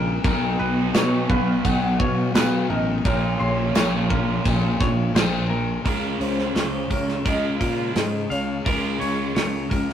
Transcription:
0.00 0.18 A#1 loud
0.00 0.23 C#3 medium
0.00 0.24 F3 medium
0.00 0.25 G#3 medium
0.00 0.26 C#4 medium
0.00 0.25 F4 medium
0.00 0.23 A#4 medium
0.24 0.56 B1 loud
0.24 3.04 B2 medium
0.24 0.92 B2 medium
0.24 3.05 F#3 medium
0.24 0.94 F#3 medium
0.24 3.05 B3 medium
0.24 0.95 B3 loud
0.24 3.06 D#4 medium
0.24 3.06 F#4 medium
0.24 0.60 A#4 medium
0.24 kick loud
0.24 crash medium
0.59 0.91 B1 loud
0.59 0.94 B4 medium
0.93 1.30 B2 medium
0.93 1.26 B2 medium
0.93 1.29 F#3 medium
0.93 1.27 B3 medium
0.93 1.29 C#5 medium
0.93 snare loud
0.93 tambourine loud
0.93 crash medium
1.28 1.61 B1 medium
1.28 2.33 B2 medium
1.28 2.35 F#3 medium
1.28 2.36 B3 medium
1.28 1.99 B4 medium
1.28 1.65 F5 loud
1.28 kick medium
1.64 1.96 B1 medium
1.64 1.99 F#5 loud
1.64 kick medium
1.64 crash medium
1.98 2.31 B2 medium
1.98 2.35 C#5 medium
1.98 2.70 F5 loud
1.98 kick medium
2.34 3.02 B2 medium
2.34 2.66 B2 loud
2.34 2.71 F#3 medium
2.34 2.68 B3 medium
2.34 2.69 B4 medium
2.34 snare loud
2.34 tambourine loud
2.34 crash medium
2.69 3.01 A1 loud
2.69 3.04 F#3 medium
2.69 3.02 B3 medium
2.69 3.04 A#4 medium
2.69 3.06 D#5 loud
3.04 3.36 A#1 medium
3.04 3.74 A#2 loud
3.04 5.85 A#2 medium
3.04 5.86 F3 medium
3.04 3.75 F3 loud
3.04 5.86 A#3 medium
3.04 3.77 A#3 loud
3.04 5.86 C#4 medium
3.04 5.86 F4 medium
3.04 3.40 A#4 loud
3.04 5.15 C#5 medium
3.04 kick loud
3.04 crash medium
3.40 3.72 A#1 loud
3.40 3.75 C6 medium
3.75 4.38 A#1 loud
3.75 4.12 A#2 medium
3.75 4.10 F3 medium
3.75 4.09 A#3 medium
3.75 4.09 C#5 medium
3.75 snare loud
3.75 tambourine loud
3.75 crash medium
4.09 5.14 A#2 medium
4.09 5.16 F3 medium
4.09 5.17 A#3 loud
4.09 4.80 A#4 medium
4.09 kick medium
4.45 4.77 A#1 medium
4.45 kick medium
4.45 crash medium
4.80 5.12 A#1 medium
4.80 5.15 C#5 medium
4.80 kick medium
4.80 snare soft
5.15 5.78 A#1 medium
5.15 5.83 A#2 medium
5.15 5.52 F3 medium
5.15 5.50 A#3 medium
5.15 5.50 C5 medium
5.15 snare loud
5.15 tambourine medium
5.15 crash medium
5.50 5.85 F3 medium
5.50 5.84 A#3 medium
5.50 5.83 A#4 medium
5.85 6.15 C#2 medium
5.85 6.92 C#3 medium
5.85 7.25 C#3 medium
5.85 7.26 G#3 medium
5.85 6.91 G#3 medium
5.85 7.27 C#4 medium
5.85 6.89 C#4 medium
5.85 7.27 F4 medium
5.85 7.28 G#4 medium
5.85 6.90 A#4 medium
5.85 kick medium
5.85 open hi-hat medium
6.20 6.51 C#2 medium
6.20 6.55 C#4 medium
6.20 6.53 C5 loud
6.20 open hi-hat soft
6.39 snare soft
6.54 6.85 C#2 medium
6.54 9.93 C#4 medium
6.54 6.91 C5 medium
6.54 snare medium
6.54 open hi-hat medium
6.90 7.21 C#2 medium
6.90 7.94 C#3 medium
6.90 7.96 G#3 medium
6.90 7.93 C#4 medium
6.90 7.25 A#4 medium
6.90 7.26 C#5 medium
6.90 kick medium
6.90 open hi-hat soft
7.09 snare soft
7.25 7.56 C#2 medium
7.25 8.64 C#3 medium
7.25 8.66 G#3 medium
7.25 8.65 C#4 medium
7.25 8.65 F4 medium
7.25 8.68 G#4 medium
7.25 7.58 A#4 medium
7.25 7.60 D#5 loud
7.25 kick medium
7.25 open hi-hat medium
7.59 7.91 A#2 medium
7.59 8.30 A#4 medium
7.59 7.97 F5 loud
7.59 kick medium
7.59 open hi-hat medium
7.95 8.26 G#2 medium
7.95 8.64 C#3 medium
7.95 8.67 G#3 medium
7.95 8.65 C#4 medium
7.95 8.33 D#5 medium
7.95 snare medium
7.95 open hi-hat medium
8.30 8.61 C#2 medium
8.30 8.68 C#5 medium
8.30 8.65 F5 medium
8.30 open hi-hat soft
8.65 8.96 C#2 medium
8.65 9.93 C#3 medium
8.65 9.69 C#3 medium
8.65 9.93 G#3 medium
8.65 9.73 G#3 medium
8.65 9.93 C#4 medium
8.65 9.70 C#4 medium
8.65 9.93 F4 medium
8.65 9.93 G#4 medium
8.65 8.99 A#4 medium
8.65 9.72 A#4 medium
8.65 kick loud
8.65 open hi-hat medium
9.00 9.31 C#2 medium
9.00 9.34 C#5 medium
9.00 open hi-hat medium
9.35 9.66 C#2 medium
9.35 9.69 C#5 medium
9.35 snare medium
9.35 open hi-hat medium
9.70 9.93 C#2 medium
9.70 9.93 G#3 medium
9.70 9.93 C#4 medium
9.70 9.93 A#4 medium
9.70 kick medium
9.70 open hi-hat soft
9.75 9.93 C#3 medium
9.90 snare soft

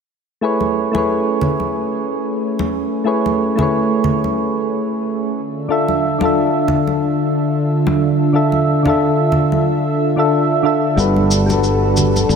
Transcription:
0.41 0.89 A3 medium
0.41 5.33 A3 medium
0.41 5.33 C#4 medium
0.41 0.90 E4 medium
0.41 0.90 G#4 medium
0.41 5.33 G#4 medium
0.41 0.91 B4 medium
0.41 0.91 C#5 medium
0.60 high conga medium
0.92 3.02 A3 medium
0.92 3.02 E4 medium
0.92 3.03 G#4 medium
0.92 high conga medium
0.96 3.04 B4 medium
0.96 3.05 C#5 medium
1.41 low conga medium
1.60 high conga medium
2.59 high conga medium
3.04 3.53 A3 medium
3.04 3.53 E4 medium
3.04 3.54 G#4 medium
3.04 3.54 B4 medium
3.04 3.55 C#5 medium
3.26 high conga medium
3.56 5.34 A3 medium
3.56 5.35 E4 medium
3.56 5.36 G#4 medium
3.56 low conga medium
3.61 5.37 B4 medium
3.61 5.38 C#5 medium
4.04 low conga medium
4.24 high conga medium
5.37 10.94 D3 medium
5.37 12.36 D4 medium
5.37 10.94 F4 medium
5.37 12.36 A4 medium
5.37 10.94 E5 medium
5.68 6.17 D3 medium
5.68 6.17 D4 medium
5.68 6.18 F4 medium
5.68 6.18 A4 medium
5.68 6.18 E5 medium
5.88 high conga medium
6.18 8.29 D3 medium
6.18 8.30 D4 medium
6.18 8.30 F4 medium
6.18 high conga medium
6.24 8.31 A4 medium
6.24 8.32 E5 medium
6.68 low conga medium
6.87 high conga medium
7.87 high conga medium
8.33 8.81 D3 medium
8.33 8.81 D4 medium
8.33 8.82 F4 medium
8.33 8.82 A4 medium
8.33 8.82 E5 medium
8.52 high conga soft
8.83 10.12 D3 medium
8.83 10.13 D4 medium
8.83 10.14 F4 medium
8.83 low conga medium
8.88 10.15 A4 medium
8.88 10.16 E5 medium
9.32 low conga medium
9.52 high conga medium
10.16 10.61 D3 medium
10.16 10.61 D4 medium
10.16 10.61 F4 medium
10.16 10.62 A4 medium
10.16 10.62 E5 medium
10.63 10.93 D3 medium
10.63 10.94 D4 medium
10.63 10.94 F4 medium
10.63 10.95 A4 medium
10.63 10.95 E5 medium
10.96 12.24 G1 medium
10.96 11.44 G3 medium
10.96 12.36 G3 medium
10.96 11.45 D4 medium
10.96 12.36 F#4 medium
10.96 11.45 F#4 medium
10.96 11.46 A4 medium
10.96 12.36 B4 medium
10.96 11.46 B4 medium
10.96 cabasa soft
11.16 high conga medium
11.31 cabasa medium
11.46 12.36 G3 medium
11.46 12.36 D4 medium
11.46 12.36 F#4 medium
11.46 high conga medium
11.46 cabasa soft
11.52 12.36 A4 medium
11.52 12.36 B4 medium
11.64 cabasa soft
11.97 low conga medium
11.97 cabasa medium
12.16 high conga medium
12.16 cabasa soft
12.29 12.36 G1 medium
12.29 cabasa soft

